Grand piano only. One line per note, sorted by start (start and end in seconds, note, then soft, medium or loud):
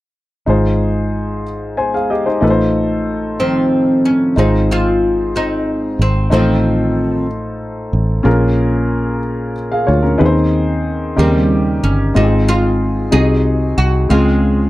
0.46 1.41 G#2 soft
0.46 1.42 D#4 soft
0.46 1.43 F4 soft
0.46 1.43 G#4 soft
0.46 1.44 C5 medium
1.77 1.93 C5 soft
1.77 1.93 G#5 soft
1.94 2.10 G#4 soft
1.94 2.09 F5 soft
2.10 2.26 G4 soft
2.10 2.25 D#5 soft
2.26 2.39 D#4 soft
2.26 2.49 C5 soft
2.41 3.35 A2 medium
2.41 4.32 D#4 medium
2.41 4.33 F4 soft
2.41 4.33 A4 soft
2.41 2.49 B4 soft
2.50 4.37 C5 medium
4.36 5.31 G#2 soft
4.36 6.27 D#4 soft
4.36 6.28 F4 soft
4.36 6.28 G#4 soft
4.36 6.29 C5 soft
6.30 7.25 A2 soft
6.30 8.22 D#4 soft
6.30 8.22 F4 soft
6.30 8.22 A4 soft
6.30 8.23 C5 medium
8.23 9.18 A#2 medium
8.23 9.52 C#4 medium
8.23 9.52 F4 medium
8.23 9.53 G#4 medium
8.23 9.53 A#4 medium
9.72 9.88 G#4 soft
9.72 9.87 F5 soft
9.87 10.03 F4 soft
9.87 10.03 C#5 medium
10.02 10.35 C#4 soft
10.02 10.34 A#4 soft
10.18 11.13 D#3 medium
10.18 11.17 C4 medium
10.18 11.15 D#4 medium
10.18 11.17 G#4 medium
10.18 10.27 B4 medium
10.25 11.20 C5 medium
11.16 12.14 C#3 soft
11.16 12.11 D#3 soft
11.16 12.13 D#4 soft
11.16 12.14 G4 soft
11.16 12.15 A#4 soft
12.14 13.09 G#2 soft
12.14 13.09 C4 soft
12.14 13.10 D#4 soft
12.14 13.13 F4 soft
12.14 12.22 G4 soft
12.22 13.11 G#4 medium
13.11 14.05 C3 soft
13.11 14.07 C4 soft
13.11 14.10 D#4 soft
13.11 14.10 F#4 soft
13.11 14.10 G#4 soft
14.09 14.70 C#3 soft
14.09 14.70 G#3 soft
14.09 14.70 C4 soft
14.09 14.70 F4 soft
14.09 14.70 G#4 medium